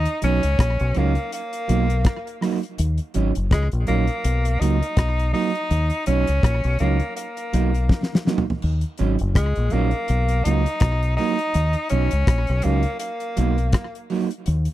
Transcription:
Already playing: D#4
0.05 closed hi-hat
0.22 B1 F#3 C#4 D#4, closed hi-hat
0.43 C#2, closed hi-hat
0.59 A#1, kick, cross-stick, closed hi-hat
0.80 B1, closed hi-hat
0.94 C#2 F#3 A#3 C#4 D#4, closed hi-hat
1.15 closed hi-hat
1.32 A#3, closed hi-hat
1.53 closed hi-hat
1.68 B1 F#3 A#3 D#4, closed hi-hat
1.90 closed hi-hat
2.05 kick, cross-stick, closed hi-hat
2.27 closed hi-hat
2.41 F#3 A#3 D#4, cross-stick, open hi-hat
2.63 closed hi-hat
2.78 D#2, closed hi-hat
2.98 closed hi-hat
3.14 G#1 F#3 C#4 D#4, closed hi-hat
3.35 F#1, closed hi-hat
3.51 C#2 G#3, kick, cross-stick, closed hi-hat
3.72 A#1, closed hi-hat
3.87 A#1 F#3 A#3 C#4 D#4, closed hi-hat
4.07 closed hi-hat
4.24 B1, closed hi-hat
4.45 closed hi-hat
4.60 C#2 F#3 A#3 D#4, closed hi-hat
4.81 muted clean electric guitar stroke, closed hi-hat
4.97 B1, kick, cross-stick, closed hi-hat
5.19 closed hi-hat
5.33 F#3 A#3 D#4, open hi-hat
5.55 closed hi-hat
5.71 D#2, closed hi-hat
5.90 closed hi-hat
6.06 B1 F#3 C#4 D#4, closed hi-hat
6.27 C#2, closed hi-hat
6.43 A#1, kick, cross-stick, closed hi-hat
6.64 B1, closed hi-hat
6.79 C#2 F#3 A#3 C#4 D#4, closed hi-hat
7.00 closed hi-hat
7.16 A#3, closed hi-hat
7.37 closed hi-hat
7.53 B1 F#3 A#3 D#4, closed hi-hat
7.74 closed hi-hat
7.89 kick, snare
8.03 snare
8.15 snare
8.27 F#3 A#3 D#4, snare
8.38 floor tom
8.50 floor tom
8.62 D#2, splash
8.81 closed hi-hat
8.98 G#1 F#3 C#4 D#4, closed hi-hat
9.19 F#1, closed hi-hat
9.35 C#2 G#3, kick, cross-stick, closed hi-hat
9.56 A#1, closed hi-hat
9.70 A#1 F#3 A#3 C#4 D#4, closed hi-hat
9.91 closed hi-hat
10.08 B1, closed hi-hat
10.29 closed hi-hat
10.44 C#2 F#3 A#3 D#4, closed hi-hat
10.66 closed hi-hat
10.80 B1, kick, cross-stick, closed hi-hat
11.03 closed hi-hat
11.17 F#3 A#3 D#4, open hi-hat
11.39 closed hi-hat
11.54 D#2, closed hi-hat
11.73 closed hi-hat
11.89 B1 F#3 C#4 D#4, closed hi-hat
12.11 C#2, closed hi-hat
12.27 A#1, kick, cross-stick, closed hi-hat
12.47 B1, closed hi-hat
12.62 C#2 F#3 A#3 C#4 D#4, closed hi-hat
12.83 closed hi-hat
12.99 A#3, closed hi-hat
13.20 closed hi-hat
13.37 B1 F#3 A#3 D#4, closed hi-hat
13.58 closed hi-hat
13.72 kick, cross-stick, closed hi-hat
13.95 closed hi-hat
14.10 F#3 A#3 D#4, open hi-hat
14.31 closed hi-hat
14.46 D#2, closed hi-hat
14.65 closed hi-hat

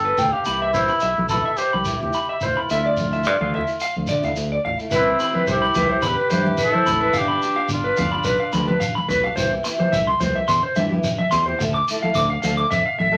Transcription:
Already playing: G1 A4
0.05 B4
0.18 D2 G5, low conga, shekere
0.31 B3 D4 G4 F5
0.45 C2 E3 B3 E4 G4 B5, shekere
0.62 E5
0.73 E3 B3 E4 G4 C5, shekere
0.88 B3 E4 G4 B5, shekere
1.00 B1 E5, shekere
1.18 B1, high conga
1.29 E3 B3 E4 A4 B5, low conga, shekere
1.33 G4
1.45 E5
1.57 G4 C5, shekere
1.73 C2 B5, high conga
1.85 E3 B3 E4 G4, shekere
2.00 E4 G4, muted nylon-string guitar stroke, low conga
2.13 B5, shekere
2.29 E5
2.41 F4 C5, low conga, shekere
2.56 B3 E4 B5, muted nylon-string guitar stroke
2.69 D2 F3 A3 E4 E5, shekere
2.86 D5
2.97 A3, muted nylon-string guitar stroke, high conga, shekere
3.11 A3 E4 E5, shekere
3.24 G2 D5, shekere
3.41 D2 F5, high conga
3.52 F3 A3 E4 E5, low conga
3.67 shekere
3.80 F5, shekere
3.96 D2, high conga
4.07 D3 F3 A3 D5, muted nylon-string guitar stroke, shekere
4.22 A3 E4 F5, low conga, shekere
4.36 D2, shekere
4.52 D5
4.65 A1 F5, low conga
4.77 A3 E4, shekere
4.90 C2 E3 B3 E4 G4 B4, shekere
4.94 C4 E4
5.17 E3 B3 G4 B5, shekere
5.32 B3 E4 G4 B4, high conga
5.47 C2 E4 G4 C5, shekere
5.62 B5
5.74 C2 E3 E4 G4 B4, high conga, low conga, shekere
5.89 C5
6.02 E2 B5, shekere
6.07 G4 B4
6.17 B4
6.30 G2 E3 B3 E4 G4 C5, high conga, shekere
6.44 B3 E4 G4, high conga
6.58 B4, shekere
6.63 E4 A4
6.73 C5, high conga
6.86 A1 B5, low conga, shekere
7.01 B3 E4 B4
7.13 G1 F3 B3 D4 G4 F5, shekere
7.18 D4 G4
7.28 B5
7.42 F3 B3 D4 G4, shekere
7.55 D4 G4 F5
7.69 G1, shekere
7.73 D4 F4
7.84 B4
7.96 G1 F3 D4 G4 F5, high conga, low conga, shekere
8.12 B5
8.24 B1 B4, shekere
8.40 F5
8.53 D2 F3 B3 D4 G4 B5, high conga, shekere
8.66 B3 D4 G4 B4, high conga
8.80 F5, shekere
8.95 B5, high conga
9.08 B1 B4, low conga, shekere
9.23 B3 D4 G4 F5
9.35 C2 E3 B3 E4 G4 C5, shekere
9.64 E3 B3 E4 G4, muted clean electric guitar stroke, shekere
9.78 B3 E4 G4 C5, high conga
9.92 C2 E5, shekere
10.07 C6
10.20 C2 E3 B3 G4 C5, high conga, low conga, shekere
10.35 E5
10.48 E2 C6, shekere
10.63 C5
10.76 G2 E3 B3 E4 G4 E5, high conga, shekere
10.91 B3 E4 G4, high conga
11.04 muted clean electric guitar stroke, shekere
11.18 E5, high conga
11.31 E2 C6, low conga, shekere
11.46 E4 G4 C5
11.51 B3
11.59 D2 F3 A3, muted clean electric guitar stroke, muted nylon-string guitar stroke, shekere
11.74 D6
11.88 F3 A3 E4 A4, shekere
12.02 A3 E4 A4 F5, high conga
12.14 D2 D6, shekere
12.30 F5
12.42 D2 F3 A3 A4 F5, muted nylon-string guitar stroke, high conga, shekere
12.57 D6
12.70 F2 E5, shekere
12.86 F5
12.98 A1 A3 E4 E5, muted nylon-string guitar stroke, high conga
13.12 E4 A4 E5

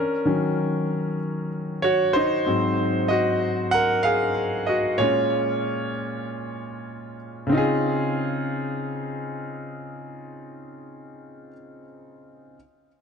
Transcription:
Already playing: C#4 A#4
0.25 D#3 F#3 C#4
1.82 F#4 C#5
2.13 D#4 C5
2.46 G#2 F#3 C4
3.08 F#4 D#5
3.71 A#4 F#5
4.03 G#4 F5
4.67 F#4 D#5
4.98 A#2 G#3 C#4 F4 C#5
7.47 C#3 C4
7.52 D#4 F4
7.58 G#4

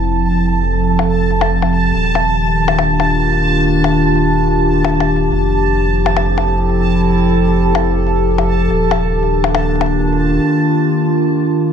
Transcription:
Already playing: F1 F3 C4 E4 G4 A5
0.08 A4
0.99 percussion blips
1.41 percussion blips
1.62 percussion blips
1.94 D#1 D#3
2.15 A#3, percussion blips
2.38 F4
2.46 D4
2.68 percussion blips
2.79 percussion blips
3.00 percussion blips
3.84 percussion blips
4.85 percussion blips
5.00 percussion blips
5.32 F1 F3
5.66 C4
5.95 A4
6.06 percussion blips
6.15 E4, percussion blips
6.38 percussion blips
7.75 percussion blips
8.38 percussion blips
8.70 D#1 D#3
8.83 D4
8.91 percussion blips
9.09 A#3
9.44 percussion blips
9.55 percussion blips
9.80 F4, percussion blips

